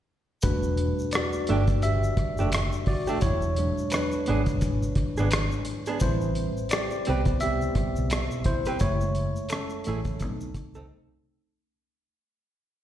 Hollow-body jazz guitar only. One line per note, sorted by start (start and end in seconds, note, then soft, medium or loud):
1.49 1.61 A3 medium
1.49 1.62 D4 medium
1.49 1.63 G4 medium
2.39 2.49 A3 soft
2.39 2.49 D4 medium
2.39 2.48 G4 medium
3.07 3.18 A3 medium
3.07 3.18 D4 medium
3.07 3.17 G4 medium
4.27 4.40 B3 medium
4.27 4.41 D4 medium
4.27 4.41 G#4 medium
5.18 5.28 B3 medium
5.18 5.28 D4 medium
5.18 5.27 G#4 medium
5.87 5.98 B3 soft
5.87 5.97 D4 soft
5.87 5.97 G#4 medium
7.07 7.20 C4 medium
7.07 7.20 G4 medium
7.07 7.21 B4 medium
8.67 8.77 C4 medium
8.67 8.76 G4 medium
8.67 8.76 B4 medium
9.87 9.99 A3 medium
9.87 10.00 E4 medium
9.87 10.00 G#4 medium
10.75 10.86 C4 soft
10.75 10.85 D#4 medium
10.75 10.85 A4 medium